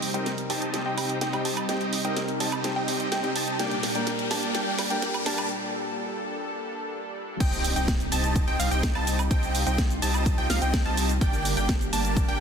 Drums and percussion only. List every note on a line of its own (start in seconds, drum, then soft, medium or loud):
0.02 open hi-hat loud
0.14 closed hi-hat medium
0.26 snare soft
0.26 closed hi-hat medium
0.38 closed hi-hat soft
0.50 open hi-hat loud
0.62 closed hi-hat medium
0.74 snare medium
0.74 closed hi-hat medium
0.98 open hi-hat loud
0.98 high woodblock medium
1.09 closed hi-hat medium
1.21 snare medium
1.21 closed hi-hat medium
1.33 closed hi-hat soft
1.33 high woodblock medium
1.45 open hi-hat loud
1.57 closed hi-hat medium
1.57 high woodblock medium
1.69 snare medium
1.69 closed hi-hat medium
1.81 closed hi-hat soft
1.93 open hi-hat loud
2.05 closed hi-hat medium
2.17 snare medium
2.17 closed hi-hat medium
2.28 closed hi-hat soft
2.40 open hi-hat loud
2.52 closed hi-hat medium
2.52 high woodblock medium
2.64 snare medium
2.64 closed hi-hat medium
2.88 open hi-hat loud
3.00 closed hi-hat medium
3.12 snare medium
3.12 closed hi-hat medium
3.24 closed hi-hat soft
3.36 open hi-hat loud
3.48 closed hi-hat medium
3.59 snare medium
3.59 closed hi-hat medium
3.71 closed hi-hat soft
3.83 snare medium
3.83 open hi-hat loud
3.95 closed hi-hat medium
4.07 snare medium
4.07 closed hi-hat medium
4.19 closed hi-hat soft
4.31 snare medium
4.31 open hi-hat loud
4.43 closed hi-hat medium
4.55 snare medium
4.55 closed hi-hat medium
4.79 snare medium
4.79 open hi-hat loud
4.79 high woodblock medium
4.90 closed hi-hat medium
5.02 snare medium
5.02 closed hi-hat medium
5.14 closed hi-hat soft
5.14 high woodblock medium
5.26 snare medium
5.26 open hi-hat loud
5.38 closed hi-hat medium
5.38 high woodblock medium
7.40 kick loud
7.40 closed hi-hat medium
7.40 crash loud
7.40 cabasa soft
7.53 closed hi-hat soft
7.53 cabasa soft
7.64 open hi-hat loud
7.64 cabasa medium
7.76 closed hi-hat medium
7.76 cabasa soft
7.88 kick loud
7.88 snare loud
7.88 closed hi-hat medium
7.88 cabasa soft
8.00 closed hi-hat soft
8.00 cabasa soft
8.12 open hi-hat loud
8.12 cabasa medium
8.24 closed hi-hat medium
8.24 cabasa soft
8.36 kick loud
8.36 closed hi-hat medium
8.36 cabasa soft
8.48 closed hi-hat soft
8.60 open hi-hat loud
8.60 cabasa medium
8.72 closed hi-hat medium
8.72 cabasa soft
8.83 kick loud
8.83 snare loud
8.83 closed hi-hat medium
8.83 cabasa soft
8.95 closed hi-hat soft
8.95 high woodblock medium
9.07 open hi-hat loud
9.07 cabasa medium
9.19 closed hi-hat medium
9.19 cabasa soft
9.19 high woodblock medium
9.31 kick loud
9.31 closed hi-hat medium
9.31 cabasa soft
9.43 closed hi-hat soft
9.43 cabasa soft
9.55 open hi-hat loud
9.55 cabasa medium
9.67 closed hi-hat medium
9.67 cabasa soft
9.78 kick loud
9.78 snare loud
9.78 closed hi-hat medium
9.78 cabasa soft
9.90 closed hi-hat soft
9.90 cabasa soft
10.02 open hi-hat loud
10.02 cabasa medium
10.14 closed hi-hat medium
10.14 cabasa soft
10.14 high woodblock medium
10.26 kick loud
10.26 closed hi-hat medium
10.26 cabasa soft
10.38 closed hi-hat soft
10.50 snare medium
10.50 open hi-hat loud
10.50 cabasa medium
10.62 closed hi-hat medium
10.62 cabasa soft
10.74 kick loud
10.74 snare loud
10.74 closed hi-hat medium
10.74 cabasa soft
10.86 closed hi-hat soft
10.97 open hi-hat loud
10.97 cabasa medium
11.09 closed hi-hat medium
11.09 cabasa soft
11.21 kick loud
11.21 closed hi-hat medium
11.21 cabasa soft
11.33 closed hi-hat soft
11.33 cabasa soft
11.45 open hi-hat loud
11.45 cabasa medium
11.57 closed hi-hat medium
11.57 cabasa soft
11.69 kick loud
11.69 snare loud
11.69 closed hi-hat medium
11.69 cabasa soft
11.81 closed hi-hat soft
11.81 cabasa soft
11.93 open hi-hat loud
11.93 cabasa medium
12.05 closed hi-hat medium
12.05 cabasa soft
12.17 kick loud
12.17 closed hi-hat medium
12.17 cabasa soft
12.29 closed hi-hat soft